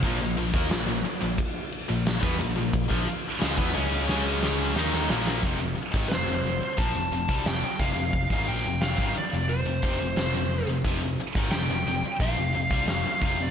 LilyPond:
<<
  \new Staff \with { instrumentName = "Lead electric guitar" } { \time 4/4 \key bes \major \tempo 4 = 89 r1 | r1 | r4 c''4 a''4 g''8 f''8 | f''8 g''8 f''8 d''8 c''4 c''8. r16 |
r4 g''4 f''4 f''8 f''16 d''16 | }
  \new Staff \with { instrumentName = "Overdriven electric guitar" } { \clef bass \time 4/4 \key bes \major <bes, f>16 <bes, f>16 <bes, f>16 <ees bes>16 <bes, f>16 <bes, f>16 r16 <bes, f>16 r8. <bes, f>8 <e b>16 <bes, f>16 <bes, f>16~ | <bes, f>16 <bes, f>16 r8 <des aes>16 <e b>16 <des aes des'>8 <des aes des'>4 <ees bes ees'>8 <bes, f bes>8 | r1 | r1 |
r1 | }
  \new Staff \with { instrumentName = "Distorted electric guitar" } { \clef bass \time 4/4 \key bes \major <bes, f>16 <bes, f>16 <bes, f>16 <ees bes>16 <bes, f>16 <bes, f>16 r16 <bes, f>16 r8. <bes, f>8 <e b>16 <bes, f>16 <bes, f>16~ | <bes, f>16 <bes, f>16 r8 <des aes>16 <e b>16 <des aes des'>8 <des aes des'>4 <ees bes ees'>8 <bes, f bes>8 | <f, c>16 <f, c>16 r16 <aes, ees>16 <f, c>16 <f, c>16 <f, c>16 r16 <bes, f>16 <f, c>16 <f, c>16 <c g>16 <f, c>16 r16 <f, c>16 <f, c>16~ | <f, c>16 <aes, ees>16 <bes, f>16 <f, c>8 <aes, ees>16 r16 <f, c>8 <f, c>16 <f, c>16 <f, c>16 <f, c>16 <f, c>8 <f, c>16 |
<f, c>16 <f, c>16 r16 <aes, ees>16 <f, c>16 <f, c>16 <f, c>16 r16 <bes, f>16 <f, c>16 <f, c>16 <c g>16 <f, c>16 r16 <f, c>16 <f, c>16 | }
  \new Staff \with { instrumentName = "Distorted electric guitar" } { \clef bass \time 4/4 \key bes \major <bes, f>16 <bes, f>16 <bes, f>16 <ees bes>16 <bes, f>16 <bes, f>16 r16 <bes, f>16 r8. <bes, f>8 <e b>16 <bes, f>16 <bes, f>16~ | <bes, f>16 <bes, f>16 r8 <des aes>16 <e b>16 <des aes des'>8 <des aes des'>4 <ees bes ees'>8 <bes, f bes>8 | <f, c>16 <f, c>16 r16 <aes, ees>16 <f, c>16 <f, c>16 <f, c>16 r16 <bes, f>16 <f, c>16 <f, c>16 <c g>16 <f, c>16 r16 <f, c>16 <f, c>16~ | <f, c>16 <aes, ees>16 <bes, f>16 <f, c>8 <aes, ees>16 r16 <f, c>8 <f, c>16 <f, c>16 <f, c>16 <f, c>16 <f, c>8 <f, c>16 |
<f, c>16 <f, c>16 r16 <aes, ees>16 <f, c>16 <f, c>16 <f, c>16 r16 <bes, f>16 <f, c>16 <f, c>16 <c g>16 <f, c>16 r16 <f, c>16 <f, c>16 | }
  \new Staff \with { instrumentName = "Picked electric bass" } { \clef bass \time 4/4 \key bes \major bes,,16 bes,,16 bes,,16 ees,16 bes,,16 bes,,16 r16 bes,,16 r8. bes,,8 e,16 bes,,16 bes,,16~ | bes,,16 bes,,16 r8 des,16 e,16 des,8 des,4 ees,8 bes,,8 | f,,16 f,,16 r16 aes,,16 f,,16 f,,16 f,,16 r16 bes,,16 f,,16 f,,16 c,16 f,,16 r16 f,,16 f,,16~ | f,,16 aes,,16 bes,,16 f,,8 aes,,16 r16 f,,8 f,,16 f,,16 f,,16 f,,16 f,,8 f,,16 |
f,,16 f,,16 r16 aes,,16 f,,16 f,,16 f,,16 r16 bes,,16 f,,16 f,,16 c,16 f,,16 r16 f,,16 f,,16 | }
  \new DrumStaff \with { instrumentName = "Drums" } \drummode { \time 4/4 bd8 cymr16 bd16 <cymr sn>8 cymr8 <bd cymr>8 cymr8 <cymr sn>16 bd16 cymr8 | <bd cymr>16 bd16 cymr8 <cymr sn>16 bd16 cymr8 sn8 sn8 sn16 sn16 sn16 sn16 | <hho bd>8 hho16 bd16 <hho sn>16 sn16 hho8 <hho bd>8 hho16 bd16 <hho sn>8 <hho bd>8 | <hho bd>16 bd16 hho8 <hho sn>16 bd16 hho8 hho8 <hho bd>8 <hho sn>8 hho8 |
<hho bd>8 hho16 bd16 <hho sn>8 hho8 <hho bd>8 hho16 bd16 <hho sn>8 <hho bd>8 | }
>>